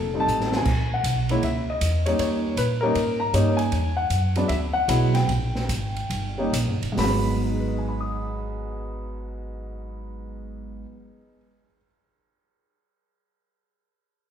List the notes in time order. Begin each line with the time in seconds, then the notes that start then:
Already playing: F1 A4
0.14 G3 A3 C4 D#4
0.20 A5
0.27 A1, hi-hat pedal
0.40 snare
0.52 snare
0.57 G#5
0.65 A#1, kick, crash
0.94 F#5
1.03 B1, kick, hi-hat pedal, ride
1.29 G#3 A#3 C#4 E4, ride
1.42 C#2 E5, kick, ride
1.70 D#5
1.81 E2, kick, hi-hat pedal, ride
2.06 G3 A#3 C#4 D#4 C#5, ride
2.19 D#2 C#5, kick, ride
2.56 A#2 B4, kick, hi-hat pedal, ride
2.81 G3 A#3 C#4 D#4 A#4
2.95 G#2, kick, ride
3.20 A#5
3.33 G2 G3 A#3 C#4 D#4, kick, hi-hat pedal, ride
3.57 G#5, ride
3.72 E2, kick, ride
3.97 F#5
4.10 F#2, kick, hi-hat pedal, ride
4.35 F#3 G#3 B3 D4, ride
4.48 D2 E5, kick, ride
4.73 F#5
4.88 B1 F#3 G#3 B3 E4, kick, hi-hat pedal, ride
5.14 G5, snare, ride
5.28 A#1, kick, ride
5.55 snare
5.69 G#1, kick, hi-hat pedal, ride
5.96 ride
6.10 G1, kick, ride
6.38 G3 A#3 C#4 D#4
6.53 A#1, kick, hi-hat pedal, ride
6.68 G1
6.82 D#1, ride
6.92 G#2 F#3
6.97 G#1 G#3 B5, snare, open hi-hat
7.04 B3
7.43 D#4
7.51 G#4
7.59 B4
7.68 D#5
7.78 G#5
7.89 B5
8.01 D#6